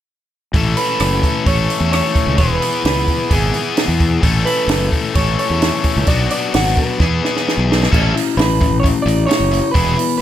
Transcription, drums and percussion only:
0.54 kick medium
0.54 open hi-hat soft
0.77 open hi-hat soft
1.00 cross-stick medium
1.00 open hi-hat medium
1.23 kick medium
1.23 open hi-hat soft
1.46 kick medium
1.46 open hi-hat medium
1.70 open hi-hat soft
1.93 cross-stick medium
1.93 open hi-hat medium
2.15 kick medium
2.15 open hi-hat soft
2.38 kick loud
2.38 open hi-hat medium
2.62 open hi-hat soft
2.85 snare loud
2.85 open hi-hat medium
3.08 kick medium
3.08 open hi-hat soft
3.31 kick medium
3.31 open hi-hat medium
3.54 open hi-hat soft
3.77 snare medium
3.77 open hi-hat medium
4.00 kick medium
4.00 open hi-hat soft
4.23 kick medium
4.23 open hi-hat medium
4.47 open hi-hat soft
4.69 snare loud
4.69 open hi-hat medium
4.93 kick medium
4.93 open hi-hat soft
5.15 kick medium
5.15 open hi-hat medium
5.39 open hi-hat soft
5.62 snare loud
5.62 open hi-hat medium
5.84 kick medium
5.84 open hi-hat soft
6.07 kick medium
6.07 open hi-hat medium
6.30 open hi-hat soft
6.54 snare loud
6.54 open hi-hat medium
6.66 snare soft
6.77 kick medium
6.77 open hi-hat soft
7.00 kick medium
7.00 snare soft
7.25 snare medium
7.36 snare soft
7.48 snare medium
7.72 snare medium
7.83 snare medium
7.93 kick medium
7.93 crash medium
8.17 open hi-hat medium
8.39 snare loud
8.39 open hi-hat medium
8.61 kick medium
8.61 open hi-hat soft
8.84 kick medium
8.84 open hi-hat medium
9.08 open hi-hat soft
9.31 snare loud
9.31 open hi-hat medium
9.53 open hi-hat soft
9.75 kick medium
9.75 open hi-hat medium
9.99 open hi-hat medium

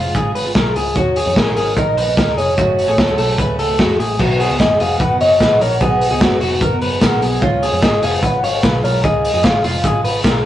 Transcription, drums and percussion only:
0.15 kick medium
0.15 closed hi-hat medium
0.35 open hi-hat medium
0.55 kick loud
0.55 snare medium
0.55 closed hi-hat medium
0.76 open hi-hat medium
0.95 kick loud
0.95 closed hi-hat medium
1.16 open hi-hat medium
1.36 kick loud
1.36 snare loud
1.36 closed hi-hat medium
1.57 open hi-hat medium
1.77 kick medium
1.77 closed hi-hat medium
1.98 open hi-hat medium
2.17 kick loud
2.17 snare medium
2.17 closed hi-hat medium
2.38 open hi-hat medium
2.58 kick loud
2.58 closed hi-hat medium
2.79 open hi-hat medium
2.98 kick loud
2.98 snare loud
2.98 closed hi-hat medium
3.18 open hi-hat medium
3.38 kick loud
3.38 closed hi-hat medium
3.59 open hi-hat medium
3.79 kick loud
3.79 snare loud
3.79 closed hi-hat medium
4.00 open hi-hat medium
4.20 kick loud
4.20 crash medium
4.40 open hi-hat medium
4.60 kick loud
4.60 snare loud
4.60 clap medium
4.60 closed hi-hat medium
4.80 open hi-hat medium
5.00 kick loud
5.00 closed hi-hat medium
5.21 open hi-hat medium
5.41 kick loud
5.41 snare medium
5.41 clap loud
5.41 closed hi-hat medium
5.61 open hi-hat medium
5.81 kick loud
5.81 closed hi-hat medium
6.01 open hi-hat medium
6.21 kick loud
6.21 snare loud
6.21 clap medium
6.21 closed hi-hat medium
6.41 open hi-hat medium
6.61 kick loud
6.61 closed hi-hat medium
6.81 open hi-hat medium
7.01 kick loud
7.01 snare loud
7.01 clap loud
7.01 closed hi-hat medium
7.22 open hi-hat medium
7.42 kick loud
7.42 closed hi-hat medium
7.63 open hi-hat medium
7.83 kick loud
7.83 snare loud
7.83 clap medium
7.83 closed hi-hat medium
8.02 open hi-hat medium
8.23 kick loud
8.23 closed hi-hat medium
8.44 open hi-hat medium
8.63 kick loud
8.63 snare loud
8.63 clap loud
8.63 closed hi-hat medium
8.85 open hi-hat medium
9.04 kick loud
9.04 closed hi-hat medium
9.25 open hi-hat medium
9.44 kick loud
9.44 snare loud
9.44 clap medium
9.44 closed hi-hat medium
9.64 open hi-hat medium
9.84 kick loud
9.84 clap medium
9.84 closed hi-hat medium
10.05 open hi-hat medium
10.24 kick loud
10.24 snare medium
10.24 clap loud
10.24 closed hi-hat medium

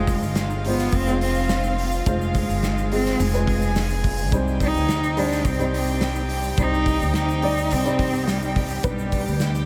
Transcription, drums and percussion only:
0.07 kick medium
0.07 hi-hat pedal medium
0.07 open hi-hat medium
0.07 shaker medium
0.23 shaker medium
0.35 snare loud
0.35 hi-hat pedal medium
0.35 open hi-hat medium
0.35 shaker medium
0.50 shaker soft
0.64 hi-hat pedal medium
0.64 open hi-hat medium
0.79 snare soft
0.79 open hi-hat medium
0.79 shaker medium
0.92 kick medium
0.92 hi-hat pedal medium
0.92 open hi-hat loud
0.92 shaker medium
1.07 hi-hat pedal medium
1.07 shaker soft
1.21 hi-hat pedal medium
1.21 open hi-hat medium
1.35 shaker medium
1.49 snare loud
1.49 hi-hat pedal medium
1.49 open hi-hat medium
1.49 shaker medium
1.63 shaker soft
1.78 hi-hat pedal medium
1.78 open hi-hat medium
1.92 shaker medium
2.06 kick loud
2.06 hi-hat pedal medium
2.06 open hi-hat medium
2.06 shaker medium
2.21 shaker soft
2.34 kick medium
2.34 hi-hat pedal medium
2.34 open hi-hat medium
2.34 shaker medium
2.49 open hi-hat medium
2.49 shaker soft
2.63 snare loud
2.63 hi-hat pedal medium
2.63 open hi-hat medium
2.63 shaker medium
2.77 hi-hat pedal medium
2.77 shaker soft
2.92 hi-hat pedal medium
2.92 open hi-hat medium
3.05 snare soft
3.05 open hi-hat soft
3.05 shaker soft
3.20 hi-hat pedal medium
3.20 open hi-hat loud
3.20 shaker medium
3.34 hi-hat pedal medium
3.34 shaker soft
3.47 kick medium
3.47 hi-hat pedal medium
3.47 open hi-hat medium
3.62 shaker medium
3.76 snare loud
3.76 hi-hat pedal medium
3.76 open hi-hat medium
3.76 shaker medium
3.90 shaker soft
4.04 kick medium
4.04 hi-hat pedal medium
4.04 open hi-hat medium
4.18 shaker medium
4.32 kick loud
4.32 hi-hat pedal medium
4.32 open hi-hat medium
4.32 shaker medium
4.48 shaker soft
4.60 kick medium
4.60 hi-hat pedal medium
4.60 open hi-hat medium
4.60 shaker soft
4.74 open hi-hat medium
4.74 shaker soft
4.89 snare loud
4.89 hi-hat pedal medium
4.89 open hi-hat medium
4.89 shaker medium
5.03 hi-hat pedal medium
5.03 shaker soft
5.17 hi-hat pedal medium
5.17 open hi-hat medium
5.32 snare soft
5.32 open hi-hat soft
5.32 shaker medium
5.45 kick loud
5.45 hi-hat pedal medium
5.45 open hi-hat loud
5.45 shaker medium
5.59 hi-hat pedal medium
5.59 shaker soft
5.74 hi-hat pedal medium
5.74 open hi-hat medium
5.87 shaker medium
6.01 snare loud
6.01 hi-hat pedal medium
6.01 open hi-hat medium
6.01 shaker medium
6.15 shaker medium
6.29 hi-hat pedal medium
6.29 open hi-hat medium
6.43 shaker medium
6.57 kick loud
6.57 hi-hat pedal medium
6.57 open hi-hat loud
6.57 shaker medium
6.74 shaker soft
6.86 kick medium
6.86 hi-hat pedal medium
6.86 open hi-hat medium
6.86 shaker soft
6.99 open hi-hat medium
6.99 shaker soft
7.14 snare loud
7.14 hi-hat pedal medium
7.14 open hi-hat medium
7.14 shaker medium
7.28 hi-hat pedal medium
7.28 shaker soft
7.42 hi-hat pedal medium
7.42 open hi-hat medium
7.57 open hi-hat soft
7.57 shaker medium
7.70 hi-hat pedal medium
7.70 open hi-hat loud
7.70 shaker medium
7.85 hi-hat pedal medium
7.85 shaker soft
7.99 kick medium
7.99 hi-hat pedal medium
7.99 open hi-hat medium
8.15 shaker medium
8.27 snare loud
8.27 hi-hat pedal medium
8.27 open hi-hat medium
8.27 shaker medium
8.42 shaker soft
8.56 kick medium
8.56 hi-hat pedal medium
8.56 open hi-hat medium
8.70 shaker medium
8.83 kick loud
8.83 hi-hat pedal medium
8.83 open hi-hat loud
8.83 shaker medium
8.99 shaker soft
9.12 kick medium
9.12 hi-hat pedal medium
9.12 open hi-hat medium
9.12 shaker medium
9.26 open hi-hat medium
9.26 shaker soft
9.40 snare loud
9.40 hi-hat pedal medium
9.40 open hi-hat medium
9.40 shaker medium
9.54 hi-hat pedal medium
9.54 shaker medium

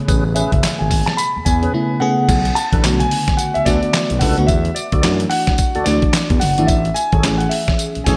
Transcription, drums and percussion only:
0.08 kick loud
0.08 closed hi-hat medium
0.08 tambourine medium
0.36 closed hi-hat medium
0.36 tambourine medium
0.52 kick loud
0.52 closed hi-hat medium
0.63 snare loud
0.63 clap medium
0.63 closed hi-hat medium
0.63 tambourine medium
0.91 kick medium
0.91 open hi-hat medium
0.91 tambourine medium
1.07 snare medium
1.07 closed hi-hat medium
1.18 closed hi-hat medium
1.18 tambourine medium
1.46 kick medium
1.46 closed hi-hat medium
1.46 tambourine medium
1.63 closed hi-hat soft
2.29 kick loud
2.29 closed hi-hat medium
2.29 crash loud
2.29 tambourine medium
2.45 closed hi-hat medium
2.56 closed hi-hat medium
2.56 tambourine medium
2.73 kick loud
2.73 closed hi-hat medium
2.84 snare loud
2.84 clap medium
2.84 closed hi-hat medium
2.84 tambourine medium
3.00 closed hi-hat medium
3.11 open hi-hat medium
3.28 kick medium
3.28 snare medium
3.28 closed hi-hat medium
3.38 closed hi-hat medium
3.38 tambourine medium
3.55 closed hi-hat medium
3.66 kick medium
3.66 snare medium
3.66 closed hi-hat medium
3.66 tambourine medium
3.83 closed hi-hat medium
3.93 snare loud
3.93 clap loud
3.93 closed hi-hat medium
3.93 tambourine medium
4.10 closed hi-hat medium
4.21 kick medium
4.21 open hi-hat medium
4.21 tambourine medium
4.38 closed hi-hat medium
4.48 kick loud
4.48 closed hi-hat medium
4.48 tambourine medium
4.65 closed hi-hat medium
4.76 closed hi-hat medium
4.76 tambourine medium
4.92 kick loud
4.92 closed hi-hat medium
5.03 snare loud
5.03 clap medium
5.03 closed hi-hat medium
5.03 tambourine medium
5.20 closed hi-hat medium
5.31 open hi-hat medium
5.47 kick medium
5.47 snare medium
5.47 closed hi-hat medium
5.58 kick medium
5.58 closed hi-hat medium
5.58 tambourine medium
5.75 closed hi-hat medium
5.86 snare medium
5.86 closed hi-hat medium
5.86 tambourine medium
6.02 kick loud
6.02 closed hi-hat medium
6.13 snare loud
6.13 clap loud
6.13 closed hi-hat medium
6.13 tambourine medium
6.30 kick loud
6.30 closed hi-hat medium
6.41 open hi-hat medium
6.41 tambourine medium
6.58 closed hi-hat medium
6.68 kick loud
6.68 closed hi-hat medium
6.68 tambourine medium
6.85 closed hi-hat medium
6.96 closed hi-hat medium
6.96 tambourine medium
7.12 kick loud
7.12 closed hi-hat medium
7.23 snare loud
7.23 clap medium
7.23 closed hi-hat medium
7.23 tambourine medium
7.40 closed hi-hat soft
7.51 open hi-hat medium
7.68 kick medium
7.68 snare medium
7.68 closed hi-hat medium
7.79 closed hi-hat medium
7.79 tambourine medium
7.95 closed hi-hat medium
8.06 kick loud
8.06 snare medium
8.06 closed hi-hat medium
8.06 tambourine medium

